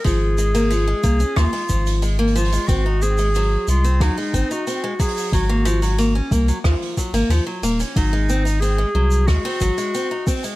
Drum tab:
HH |o-----o-o-------o-o---o-o--o-oo-|o-----o-o-------o-o-----o---ooo-|o-----o-o---o---o-o---o-o---o-o-|o-----o-o-------o-o---o-o---ooo-|
SH |x---x-x-x---x-x-x---x-x-x---x-x-|x---x-x-x---x-x-x---x-x-x---x-x-|x---x-x-x---x-x-----x-x-x---x-x-|x---x-x-x-----x-x---x-x-x---x-x-|
SD |----------------r---------------|----------------r---------------|----------------r---------------|----------------r---------------|
BD |o-----------o---o---o-----------|o---------------o---o-------o---|o-----------o---o---o-----------|o---------------o---o-------o---|